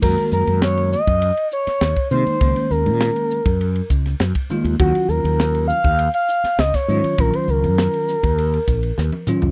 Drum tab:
CC |x---------------|----------------|----------------|----------------|
RD |-x-xxx-xxx-xxx-x|xx-xxx-xxx-xxx-x|xx-xxx-xxx-xxx-x|xx-xxx-xxx-x----|
HH |--p---p---p---p-|--p---p---p---p-|--p---p---p---p-|--p---p---p---p-|
SD |----o-o----oo---|----o------oo---|----o------ooo--|----o-o-----o---|
T1 |----------------|----------------|----------------|-------------o--|
T2 |----------------|----------------|----------------|--------------o-|
FT |----------------|----------------|----------------|---------------o|
BD |o------o-----o--|o------o--o--o--|o------o-----o--|o------o--o-----|